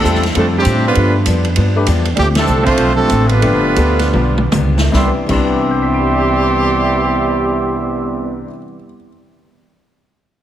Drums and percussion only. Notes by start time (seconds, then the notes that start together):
0.05 hi-hat pedal
0.15 snare
0.23 snare, ride
0.35 ride
0.65 hi-hat pedal, ride
0.95 ride
1.26 hi-hat pedal, ride
1.45 ride
1.56 ride
1.86 hi-hat pedal, ride
2.05 ride
2.17 ride
2.35 snare, ride
2.47 hi-hat pedal
2.66 kick, ride
2.78 ride
3.10 hi-hat pedal, ride
3.29 ride
3.42 ride
3.76 hi-hat pedal, ride
3.99 snare, ride
4.13 mid tom
4.38 mid tom
4.51 hi-hat pedal, mid tom
4.78 snare
4.93 kick, snare
5.29 kick, crash